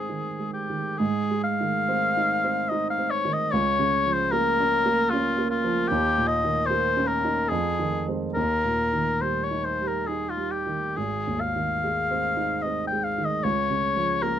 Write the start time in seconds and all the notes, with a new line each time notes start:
Already playing: G#2 D#3 G#3 C4 D#4 G#4
0.09 D#3
0.39 G#3
0.53 G4
0.70 D#3
0.97 G#2 G#4
1.31 G#3
1.44 F5
1.60 D#3
1.88 C4
2.17 D#4
2.44 C4
2.69 D#4 D#5
2.90 F5
2.98 C4
3.10 C#5
3.25 D#3
3.33 D#5
3.51 C#2 C#5
3.79 C#3
4.06 F3
4.13 C5
4.31 A#3 A#4
4.60 C#4
4.86 A#3
5.10 C#4 F4
5.38 A#3
5.50 F4
5.64 F3
5.88 D#2 G4
6.18 A#2
6.27 D#5
6.45 D#3
6.66 C5
6.71 A#3
6.97 C#4
7.07 A#4
7.25 D#4
7.49 F2 G#4
7.79 D#3
8.08 G#3 C4
8.34 D#2 A#4
8.65 A#2
8.93 D#3
9.21 G3 C5
9.44 C#5
9.51 D#4
9.65 C5
9.81 G3
9.87 A#4
10.07 D#4 G#4
10.29 F4
10.37 G3
10.51 G4
10.66 D#3
10.96 G#1 G#4
11.27 D#2
11.40 F5
11.56 D#3
11.84 G#3
12.11 C4
12.37 D#4
12.62 C4 D#5
12.87 G5
12.92 G#3
13.04 F5
13.18 D#3
13.25 D#5
13.43 C#2 C#5
13.70 C#3
13.96 F3
14.22 A#3 A#4